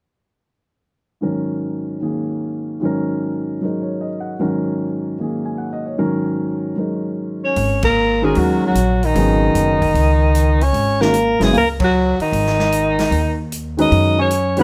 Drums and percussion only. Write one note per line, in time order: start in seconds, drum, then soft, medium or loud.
7.56 open hi-hat soft
7.83 kick medium
7.83 ride medium
8.35 open hi-hat soft
8.75 closed hi-hat soft
9.03 open hi-hat soft
9.15 open hi-hat soft
9.55 closed hi-hat soft
9.82 kick soft
9.82 open hi-hat soft
9.95 open hi-hat soft
10.35 closed hi-hat medium
10.61 open hi-hat soft
10.74 open hi-hat soft
11.02 snare medium
11.14 closed hi-hat soft
11.41 snare soft
11.41 open hi-hat soft
11.54 open hi-hat soft
11.80 kick medium
11.80 ride medium
12.20 open hi-hat soft
12.33 open hi-hat soft
12.47 snare soft
12.59 snare soft
12.72 closed hi-hat medium
12.99 snare medium
12.99 open hi-hat soft
13.12 open hi-hat soft
13.52 closed hi-hat soft
13.78 open hi-hat soft
13.92 open hi-hat soft
14.31 closed hi-hat soft
14.57 open hi-hat soft